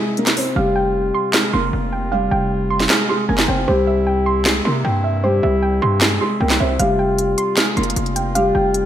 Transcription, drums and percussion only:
0.17 closed hi-hat soft
0.26 snare medium
0.26 clap medium
0.26 closed hi-hat medium
0.37 open hi-hat medium
1.34 snare loud
1.34 clap medium
2.80 snare medium
2.89 snare loud
2.89 clap loud
3.38 snare medium
3.38 clap medium
4.45 snare loud
4.45 clap medium
6.01 snare loud
6.01 clap loud
6.50 snare medium
6.50 clap medium
6.79 closed hi-hat medium
7.18 closed hi-hat medium
7.38 closed hi-hat medium
7.57 snare loud
7.57 clap loud
7.57 closed hi-hat medium
7.77 closed hi-hat soft
7.83 closed hi-hat medium
7.90 closed hi-hat medium
7.96 closed hi-hat medium
8.06 closed hi-hat soft
8.16 closed hi-hat medium
8.35 closed hi-hat medium
8.74 closed hi-hat medium

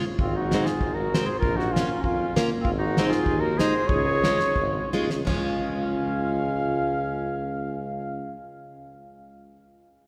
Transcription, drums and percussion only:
0.19 kick medium
0.51 snare medium
0.51 hi-hat pedal soft
0.66 snare medium
0.81 kick medium
1.14 snare medium
1.14 hi-hat pedal soft
1.43 kick medium
1.60 snare soft
1.76 snare medium
1.76 hi-hat pedal soft
2.04 kick medium
2.36 snare medium
2.36 hi-hat pedal medium
2.65 kick medium
2.97 snare medium
2.97 hi-hat pedal soft
3.12 snare soft
3.26 kick medium
3.59 snare medium
3.59 hi-hat pedal medium
3.89 kick medium
4.24 snare medium
4.24 hi-hat pedal soft
4.40 snare soft
4.56 kick medium
4.93 hi-hat pedal soft
5.10 snare medium
5.27 kick medium
5.27 floor tom medium
5.27 crash medium

